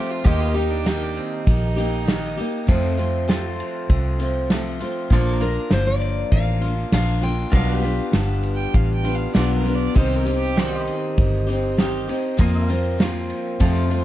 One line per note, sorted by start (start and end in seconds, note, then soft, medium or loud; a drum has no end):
0.00 0.24 F3 medium
0.00 0.25 A3 medium
0.00 0.26 C4 medium
0.00 0.25 F4 medium
0.00 0.12 G4 medium
0.00 0.23 A4 medium
0.00 0.24 F5 medium
0.11 0.28 F4 medium
0.24 1.18 D#2 medium
0.24 0.55 D#3 loud
0.24 0.56 A#3 loud
0.24 0.55 D#4 loud
0.24 2.65 G4 medium
0.24 0.42 G4 loud
0.24 0.53 G4 loud
0.24 0.51 C5 medium
0.24 2.67 D#5 medium
0.24 kick loud
0.24 ride medium
0.40 0.56 F4 medium
0.51 0.72 D#4 medium
0.51 0.86 G4 medium
0.51 2.66 A#4 medium
0.56 0.85 A#3 soft
0.56 0.86 D#4 medium
0.56 ride medium
0.71 0.88 D4 medium
0.85 1.77 D#3 medium
0.85 1.77 A#3 medium
0.85 1.03 D#4 medium
0.85 1.76 D#4 medium
0.85 1.75 G4 medium
0.85 snare loud
0.85 ride medium
1.02 1.19 D4 medium
1.17 1.46 C4 medium
1.17 ride medium
1.47 2.39 A#1 medium
1.47 2.65 D#4 loud
1.47 kick loud
1.47 ride medium
1.76 2.06 A#3 medium
1.76 2.07 D#4 medium
1.76 2.07 G4 medium
1.76 ride medium
2.06 2.37 D#3 medium
2.06 2.38 A#3 medium
2.06 2.38 D#4 medium
2.06 2.36 G4 medium
2.06 snare loud
2.06 ride medium
2.37 2.68 A#3 soft
2.37 2.68 D#4 medium
2.37 2.68 G4 medium
2.37 ride medium
2.67 2.98 F2 medium
2.67 3.61 F2 medium
2.67 2.99 C3 medium
2.67 2.99 F3 loud
2.67 2.99 A3 loud
2.67 2.97 C4 loud
2.67 2.96 F4 medium
2.67 kick loud
2.67 ride medium
2.97 3.26 F3 medium
2.97 3.28 A3 medium
2.97 3.29 C4 medium
2.97 3.28 F4 medium
2.97 ride medium
3.28 4.22 F3 medium
3.28 4.20 A3 medium
3.28 4.19 C4 medium
3.28 4.19 F4 medium
3.28 3.54 G4 medium
3.28 5.10 A4 medium
3.28 5.10 C5 medium
3.28 snare loud
3.28 ride medium
3.54 5.09 F4 medium
3.60 ride medium
3.89 4.82 C2 medium
3.89 kick loud
3.89 ride medium
4.19 4.49 F3 medium
4.19 4.50 A3 medium
4.19 4.51 C4 medium
4.19 4.50 F4 medium
4.19 ride medium
4.50 4.80 F3 medium
4.50 4.81 A3 medium
4.50 4.80 C4 medium
4.50 4.79 F4 medium
4.50 snare loud
4.50 ride medium
4.80 5.10 F3 soft
4.80 5.11 A3 medium
4.80 5.11 C4 medium
4.80 5.11 F4 medium
4.80 ride medium
5.10 5.57 A#1 medium
5.10 5.41 A#2 medium
5.10 5.41 F3 loud
5.10 5.42 A#3 medium
5.10 5.41 D4 medium
5.10 5.39 F4 medium
5.10 7.52 F4 medium
5.10 5.33 A4 medium
5.10 kick loud
5.10 ride medium
5.15 7.53 D5 medium
5.33 7.52 A#4 medium
5.40 5.71 A#3 soft
5.40 5.72 D4 soft
5.40 5.71 F4 medium
5.40 5.70 A#4 medium
5.40 ride medium
5.71 6.23 G1 medium
5.71 6.62 F3 medium
5.71 6.63 A#3 medium
5.71 6.62 D4 medium
5.71 6.60 F4 medium
5.71 5.88 C5 medium
5.71 snare loud
5.71 ride medium
5.87 6.32 D5 medium
6.01 ride medium
6.32 6.84 A1 medium
6.32 6.93 F5 medium
6.32 kick loud
6.32 ride medium
6.61 6.91 A#3 soft
6.61 6.92 D4 medium
6.61 6.92 F4 medium
6.61 ride medium
6.92 7.44 A#1 medium
6.92 7.23 F3 medium
6.92 7.23 A#3 medium
6.92 7.22 D4 medium
6.92 7.20 F4 medium
6.92 7.23 F5 loud
6.92 snare loud
6.92 ride medium
7.22 7.52 A#3 soft
7.22 7.52 D4 medium
7.22 7.53 F4 medium
7.22 7.52 G5 loud
7.22 ride medium
7.51 7.99 B1 medium
7.51 7.83 B2 medium
7.51 7.83 G3 medium
7.51 7.84 B3 medium
7.51 7.83 D4 medium
7.51 7.77 F4 medium
7.51 7.81 F4 medium
7.51 7.73 A#4 medium
7.51 9.94 D5 medium
7.51 8.71 F5 loud
7.51 kick loud
7.51 ride medium
7.73 9.93 G4 medium
7.73 9.93 B4 medium
7.82 8.12 B3 soft
7.82 8.13 D4 medium
7.82 8.13 F4 medium
7.82 ride medium
8.12 8.66 G1 medium
8.12 9.04 G3 medium
8.12 9.05 B3 medium
8.12 9.04 D4 medium
8.12 9.02 F4 medium
8.12 snare loud
8.12 ride medium
8.43 ride medium
8.55 8.77 G5 medium
8.74 9.26 A1 medium
8.74 8.94 F5 medium
8.74 kick loud
8.74 ride medium
8.94 9.17 G5 medium
9.04 9.33 B3 medium
9.04 9.34 D4 medium
9.04 9.35 F4 medium
9.04 ride medium
9.15 9.33 F5 medium
9.33 9.87 B1 medium
9.33 9.65 G3 medium
9.33 9.65 B3 medium
9.33 9.64 D4 medium
9.33 9.63 F4 medium
9.33 9.54 D5 medium
9.33 snare loud
9.33 ride medium
9.55 9.76 A#4 medium
9.64 9.95 B3 medium
9.64 9.96 D4 medium
9.64 9.95 F4 medium
9.64 ride medium
9.75 9.97 D5 medium
9.94 10.88 C2 medium
9.94 10.26 C3 medium
9.94 10.26 D#3 medium
9.94 10.26 C4 loud
9.94 10.26 D#4 loud
9.94 10.24 G4 loud
9.94 10.17 C5 loud
9.94 kick loud
9.94 ride medium
10.16 10.35 A#4 medium
10.25 10.56 C4 soft
10.25 10.57 D#4 medium
10.25 10.56 G4 medium
10.25 ride medium
10.35 10.95 G4 loud
10.56 11.47 D#3 medium
10.56 11.48 C4 medium
10.56 11.48 D#4 medium
10.56 12.37 G4 medium
10.56 11.45 G4 medium
10.56 12.38 C5 medium
10.56 10.79 D5 medium
10.56 snare loud
10.56 ride medium
10.79 12.38 D#5 medium
10.87 ride medium
11.18 12.10 G1 medium
11.18 kick loud
11.18 ride medium
11.47 11.77 C4 medium
11.47 11.78 D#4 medium
11.47 11.78 G4 medium
11.47 ride medium
11.77 12.08 D#3 medium
11.77 12.09 C4 medium
11.77 12.08 D#4 medium
11.77 12.06 G4 medium
11.77 snare loud
11.77 ride medium
12.07 12.38 C4 medium
12.07 12.39 D#4 medium
12.07 12.38 G4 medium
12.07 ride medium
12.37 12.68 F2 medium
12.37 13.31 F2 medium
12.37 12.69 C3 loud
12.37 12.69 F3 loud
12.37 12.69 A#3 loud
12.37 12.68 C4 loud
12.37 12.67 F4 loud
12.37 13.60 A#4 medium
12.37 13.60 C5 medium
12.37 kick loud
12.37 ride loud
12.41 12.66 D#5 medium
12.66 13.00 C4 medium
12.66 12.99 F4 medium
12.66 13.60 F5 medium
12.66 ride medium
12.70 12.97 F3 medium
12.70 12.98 A#3 medium
12.98 13.59 F3 medium
12.98 13.60 A#3 medium
12.98 13.60 C4 medium
12.98 13.61 F4 medium
12.98 snare loud
12.98 ride medium
13.30 ride medium
13.60 13.90 F2 medium
13.60 14.04 F2 medium
13.60 13.91 C3 medium
13.60 13.91 F3 medium
13.60 13.91 A3 medium
13.60 13.90 C4 loud
13.60 13.89 F4 loud
13.60 14.04 A4 medium
13.60 14.04 C5 medium
13.60 14.04 F5 medium
13.60 kick loud
13.60 ride loud
13.90 14.04 F3 medium
13.90 14.04 A3 medium
13.90 14.04 C4 medium
13.90 14.04 F4 medium
13.90 ride medium